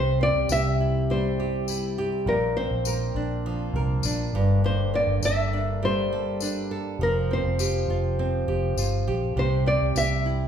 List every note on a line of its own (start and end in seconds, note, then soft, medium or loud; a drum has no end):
0.00 0.31 C2 medium
0.00 2.24 C3 medium
0.00 2.27 C3 medium
0.00 0.20 C4 medium
0.00 4.30 C4 medium
0.00 2.24 E4 medium
0.00 0.50 G4 medium
0.00 2.24 G4 medium
0.00 0.22 C5 medium
0.21 2.57 C4 medium
0.21 0.52 D5 loud
0.34 0.48 C2 medium
0.49 2.23 C2 loud
0.49 1.38 G4 medium
0.49 1.11 E5 loud
0.49 tambourine medium
0.80 1.68 E4 medium
1.10 2.33 G3 medium
1.10 2.32 C5 medium
1.40 1.97 G4 medium
1.68 2.33 E4 medium
1.68 tambourine medium
1.98 2.33 G4 medium
2.26 2.67 A#1 loud
2.26 4.34 A#2 medium
2.26 4.32 A#3 medium
2.26 6.96 D4 medium
2.26 2.55 A#4 medium
2.57 4.40 C4 medium
2.57 3.71 C5 medium
2.71 3.12 A#1 medium
2.85 3.75 A#4 medium
2.85 tambourine medium
3.15 3.70 A#1 loud
3.15 4.05 D4 medium
3.46 4.40 F3 medium
3.74 4.01 C2 loud
3.74 5.23 A#4 medium
4.03 4.31 A#1 loud
4.03 5.53 D4 medium
4.03 tambourine medium
4.33 5.03 G1 medium
4.33 4.63 G2 medium
4.33 6.97 G3 medium
4.33 6.97 A#3 medium
4.33 6.97 A4 medium
4.64 7.00 G2 medium
4.64 4.95 C5 medium
4.94 7.06 A#3 medium
4.94 5.24 D5 loud
5.07 5.21 G1 loud
5.22 6.96 G1 loud
5.22 6.11 A4 medium
5.22 5.84 E5 loud
5.22 tambourine medium
5.53 6.41 D4 medium
5.83 7.01 G3 medium
5.83 7.05 C5 medium
6.12 6.70 A4 medium
6.40 7.06 D4 medium
6.40 tambourine medium
6.71 7.06 A4 medium
6.99 7.40 F1 medium
6.99 9.34 F3 medium
6.99 9.37 F3 medium
6.99 9.34 F4 medium
6.99 9.34 G4 medium
6.99 7.32 A#4 medium
6.99 9.34 C5 medium
7.31 8.19 C4 medium
7.31 8.46 C5 medium
7.44 7.85 F1 medium
7.59 8.48 G4 medium
7.59 tambourine medium
7.88 8.43 F1 loud
7.88 8.77 F4 medium
8.19 9.66 C4 medium
8.48 8.75 F1 medium
8.48 9.07 G4 medium
8.77 9.04 G1 medium
8.77 9.43 F4 medium
8.77 tambourine medium
9.07 9.34 A#1 medium
9.07 9.95 G4 medium
9.36 9.77 C2 loud
9.36 10.48 C3 medium
9.36 10.48 C4 medium
9.36 10.48 E4 medium
9.36 10.48 G4 medium
9.36 9.67 C5 medium
9.66 10.48 C4 medium
9.66 9.97 D5 medium
9.81 9.94 C2 medium
9.95 10.48 C2 medium
9.95 10.48 G4 medium
9.95 10.48 E5 loud
9.95 tambourine medium
10.26 10.48 E4 medium